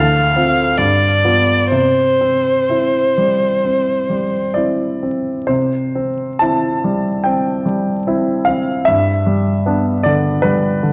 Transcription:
0.00 0.76 D2 soft
0.00 0.79 F5 medium
0.36 0.75 C4 soft
0.36 0.75 F4 soft
0.77 1.69 G2 soft
0.77 1.70 D5 medium
1.25 1.69 B3 soft
1.25 1.69 F4 soft
1.71 3.61 C3 soft
1.71 4.51 C5 medium
2.21 2.68 C4 soft
2.69 3.14 C4 soft
2.69 3.14 E4 soft
3.18 3.92 G3 soft
3.65 4.38 C4 soft
4.10 4.84 G3 soft
4.54 4.99 C4 soft
4.54 4.99 E4 soft
4.54 5.48 D5 soft
5.03 5.49 C4 soft
5.47 7.22 C3 soft
5.47 6.41 C5 medium
5.95 6.40 C4 soft
6.39 6.80 C4 soft
6.39 6.81 E4 soft
6.39 7.25 A5 medium
6.84 7.50 G3 soft
7.24 7.91 C4 soft
7.24 8.47 G5 soft
7.66 8.31 G3 soft
8.07 8.43 C4 soft
8.07 8.44 E4 soft
8.45 8.87 C4 soft
8.45 8.86 F5 soft
8.85 10.41 G2 soft
8.85 10.05 E5 medium
9.26 9.90 G3 soft
9.66 10.02 B3 soft
9.66 10.02 D4 soft
10.03 10.67 D3 soft
10.03 10.43 D5 medium
10.42 10.93 G3 soft
10.42 10.93 B4 medium
10.83 10.93 D3 soft

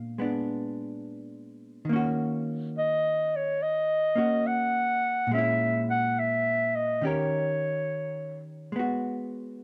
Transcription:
0.00 1.90 A#2 soft
0.00 0.17 G#3 soft
0.00 0.18 B3 soft
0.00 0.20 D4 medium
0.18 1.89 G#3 soft
0.18 1.90 B3 soft
0.18 1.91 D4 soft
1.85 5.28 D#3 soft
1.89 4.14 A#3 soft
1.89 4.16 C#4 medium
1.96 4.17 F#4 medium
2.78 3.37 D#5 medium
3.36 3.64 C#5 medium
3.62 4.48 D#5 medium
4.16 5.30 A#3 soft
4.16 5.31 C#4 soft
4.16 5.32 F#4 soft
4.47 5.32 F#5 medium
5.27 7.00 A#2 medium
5.31 7.02 G#3 medium
5.31 7.02 C#4 medium
5.31 5.85 E5 medium
5.38 7.04 E4 medium
5.90 6.21 F#5 medium
6.19 6.77 E5 medium
6.76 7.07 D#5 medium
7.02 8.74 D#3 soft
7.02 8.75 C#4 soft
7.02 8.76 G4 soft
7.02 8.48 C#5 medium
7.07 8.77 A#4 soft
8.72 9.64 G#3 soft
8.72 9.64 B3 soft
8.79 9.64 F#4 soft

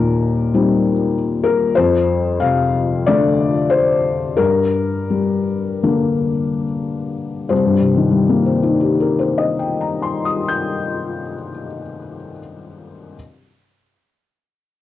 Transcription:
0.00 1.72 D#2 soft
0.00 0.91 A#2 soft
0.00 1.14 A#4 medium
0.54 1.72 G3 soft
0.54 1.72 C4 soft
0.54 1.72 D#4 soft
1.43 1.75 A#4 medium
1.75 4.34 F2 medium
1.75 2.40 C5 medium
2.40 3.45 C3 soft
2.40 3.05 F5 medium
3.06 4.35 D3 soft
3.06 4.35 A3 soft
3.06 4.36 D4 soft
3.06 3.71 D5 medium
3.70 4.38 C5 medium
4.37 7.46 G2 soft
4.37 6.62 A#4 medium
5.10 6.31 G3 soft
5.83 7.46 D3 soft
5.83 7.46 A#3 soft
5.83 7.47 D4 soft
7.49 11.19 C2 soft
7.49 9.17 C5 soft
7.65 11.35 G2 soft
7.80 11.49 C3 soft
7.96 11.65 D#3 soft
8.11 11.80 G3 soft
8.29 11.98 A#3 soft
8.46 12.15 C4 soft
8.63 12.32 D#4 soft
8.80 12.39 G4 soft
9.00 12.39 A#4 soft
9.19 12.39 C5 soft
9.38 12.38 D#5 soft
9.59 12.39 G5 soft
9.81 12.39 A#5 soft
10.02 12.39 C6 soft
10.25 12.39 D#6 soft
10.48 12.39 G6 soft

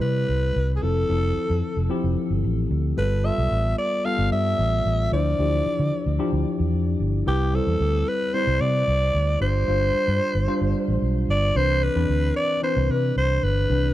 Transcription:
0.00 0.23 C3 loud
0.00 0.85 G3 medium
0.00 0.83 C4 medium
0.00 0.83 E4 medium
0.00 0.84 B4 medium
0.00 0.71 B4 loud
0.29 0.50 C2 medium
0.56 0.77 C2 loud
0.77 0.84 G#4 medium
0.82 1.04 F1 medium
0.82 1.07 F3 medium
0.82 1.07 C4 medium
0.82 1.08 E4 medium
0.82 1.90 A4 medium
0.82 1.08 A4 medium
1.09 1.31 F1 loud
1.09 1.84 F3 medium
1.09 1.84 C4 medium
1.09 1.84 E4 medium
1.09 1.84 A4 medium
1.50 1.61 F2 medium
1.77 1.87 F1 medium
1.90 2.89 F3 medium
1.90 2.89 C4 medium
1.90 2.89 E4 medium
1.90 2.90 G4 medium
2.04 2.14 F1 medium
2.30 2.41 G1 medium
2.44 2.65 A1 medium
2.71 2.92 D2 medium
2.97 3.29 G1 medium
2.97 3.22 G3 medium
2.97 3.22 B3 medium
2.97 3.22 F4 medium
2.97 3.22 A4 medium
2.97 3.27 B4 medium
3.24 3.99 G3 medium
3.24 3.99 B3 medium
3.24 3.99 F4 medium
3.24 3.99 A4 medium
3.24 3.78 E5 loud
3.38 3.49 B1 medium
3.51 3.73 A1 medium
3.78 4.07 D5 loud
4.05 5.04 G3 medium
4.05 5.04 B3 medium
4.05 5.04 F4 medium
4.05 5.04 A4 medium
4.05 4.32 F5 loud
4.18 4.29 G1 medium
4.32 4.53 G2 medium
4.32 5.08 E5 loud
4.59 4.80 A1 medium
4.85 5.07 A1 medium
5.12 5.33 D2 loud
5.12 5.37 F3 medium
5.12 5.37 D4 medium
5.12 5.37 E4 medium
5.12 5.37 C5 medium
5.12 6.16 D5 medium
5.39 5.60 D2 medium
5.39 5.45 E3 soft
5.39 6.13 D4 medium
5.39 6.14 E4 medium
5.39 6.14 G4 medium
5.45 6.16 F3 medium
5.79 5.90 D3 loud
6.06 6.17 D2 medium
6.19 7.18 F3 medium
6.19 7.18 D4 medium
6.19 7.19 E4 medium
6.19 7.19 G4 loud
6.33 6.43 D2 medium
6.60 6.70 E2 medium
6.73 6.94 F2 medium
7.00 7.21 G1 medium
7.26 7.59 C2 loud
7.26 7.51 G3 medium
7.26 7.51 C4 medium
7.26 7.51 E4 medium
7.26 7.56 G4 medium
7.26 7.52 B4 medium
7.53 8.28 G3 medium
7.53 8.28 C4 medium
7.53 8.28 E4 medium
7.53 8.10 A4 medium
7.53 8.28 C5 medium
7.67 7.77 E2 medium
7.80 8.02 D2 medium
8.09 8.35 B4 loud
8.33 9.33 G3 medium
8.33 9.33 C4 medium
8.33 9.33 E4 medium
8.33 8.62 C5 loud
8.33 9.33 C5 medium
8.47 8.58 C2 medium
8.61 8.82 C3 loud
8.61 9.41 D5 loud
8.88 9.09 C2 medium
9.14 9.36 D2 loud
9.40 9.62 G1 loud
9.40 9.66 G3 medium
9.40 9.66 D4 medium
9.40 9.66 F4 medium
9.40 10.98 C5 loud
9.40 9.66 C5 medium
9.67 9.89 G1 medium
9.67 10.42 G3 medium
9.67 10.42 D4 medium
9.67 10.42 F4 medium
9.67 10.43 C5 medium
9.95 muted fingered electric bass stroke soft
10.08 10.19 G2 loud
10.35 10.45 G1 medium
10.47 11.47 G3 medium
10.47 11.47 D4 medium
10.47 11.47 F4 medium
10.47 11.47 C5 loud
10.61 10.72 G1 medium
10.88 10.99 A1 medium
11.02 11.23 B1 medium
11.28 11.50 G1 medium
11.28 11.58 D5 loud
11.55 11.87 C2 medium
11.55 11.92 E3 medium
11.55 11.93 C4 medium
11.55 11.93 D4 medium
11.55 11.93 B4 medium
11.55 11.85 C5 loud
11.83 12.36 B4 loud
11.95 12.06 E2 medium
11.95 12.57 E3 medium
11.95 12.58 C4 medium
11.95 12.58 D4 medium
11.95 12.58 B4 medium
12.09 12.30 D2 medium
12.36 12.61 D5 loud
12.62 13.61 E3 medium
12.62 13.62 C4 medium
12.62 13.62 D4 medium
12.62 13.62 B4 medium
12.62 12.92 C5 loud
12.77 12.87 C2 medium
12.89 13.11 C3 loud
12.89 13.17 B4 medium
13.16 13.38 C2 medium
13.16 13.45 C5 loud
13.43 13.64 G1 loud
13.43 13.94 B4 loud
13.69 13.91 C2 loud
13.69 13.94 E3 medium
13.69 13.94 C4 medium
13.69 13.94 D4 medium
13.69 13.94 B4 medium

